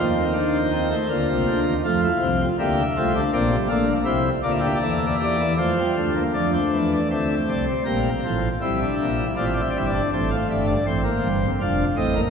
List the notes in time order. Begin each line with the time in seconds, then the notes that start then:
Already playing: D#2 D#3 A#3 F4 C5
0.17 C4
0.34 D4 F4
0.72 C4 D#4
0.90 A3
1.09 D2 D3 A#3 F4
1.29 C2 C3
1.47 D2 D3
1.66 D#2 D#3
1.85 F2 F3 A3 F4 F5
2.04 E4
2.22 C2 C3 C4
2.41 F4
2.59 D2 D3 A#3 G4 E5
2.97 C2 C3 A3 F4
3.15 D4
3.33 A#1 A#2 A#3 C4 D5
3.51 G3
3.69 A#1 A#2 A3 D4 F5
3.87 A#3
4.05 C2 C3 C4 E4 E5
4.43 D2 D3 A#3 F4 D5
4.51 E5
4.58 G4 D5
4.66 E5
4.75 D5
4.81 E2 E3 A4 E5
4.90 D5
4.99 E5
5.06 D5
5.15 E5
5.20 G4
5.24 D5
5.40 E4
5.58 F2 F3 A3 F4 C5
5.78 G3
5.97 D2 D3 A3
6.15 A#3
6.34 F2 F3 A3 D4 D5
6.53 C5
6.73 E2 E3
6.93 D5
7.10 D2 D3 C4 E5
7.49 C2 C3 D5
7.67 C5
7.85 A#1 A#2 G3 A#4
8.25 A1 A2 F3 C5
8.61 C2 C3 G3 E4 E5
8.82 D4
9.01 A#1 A#2
9.18 E4
9.37 A1 A2 C4 F4 D5
9.45 E5
9.53 D5
9.60 E5
9.70 D5
9.76 G1 G2 E4 E5
9.86 D5
9.94 D4
10.13 A1 A2 A3 C4 C5
10.31 F5
10.50 G1 G2 D4 E5
10.68 D5
10.86 A1 A2 C4 C5
11.04 A#3
11.23 G1 G2
11.43 C4
11.61 F1 F2 D4 F5
11.97 A1 A2 C4 D#5
12.15 A#3